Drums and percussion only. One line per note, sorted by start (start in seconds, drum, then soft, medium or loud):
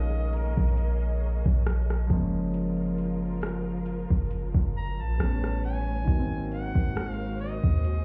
0.33 closed hi-hat medium
0.57 kick medium
0.78 closed hi-hat medium
1.46 kick medium
1.67 cross-stick loud
1.67 closed hi-hat medium
1.90 cross-stick medium
2.10 kick loud
2.10 closed hi-hat medium
2.54 closed hi-hat medium
2.98 closed hi-hat medium
3.41 cross-stick loud
3.41 closed hi-hat medium
3.86 closed hi-hat medium
4.10 kick medium
4.31 closed hi-hat medium
4.55 kick medium
5.20 cross-stick loud
5.20 closed hi-hat medium
5.44 cross-stick medium
5.64 open hi-hat medium
6.08 kick loud
6.08 closed hi-hat medium
6.52 closed hi-hat medium
6.75 kick medium
6.95 cross-stick loud
6.95 closed hi-hat medium
7.39 closed hi-hat medium
7.64 kick medium
7.84 closed hi-hat medium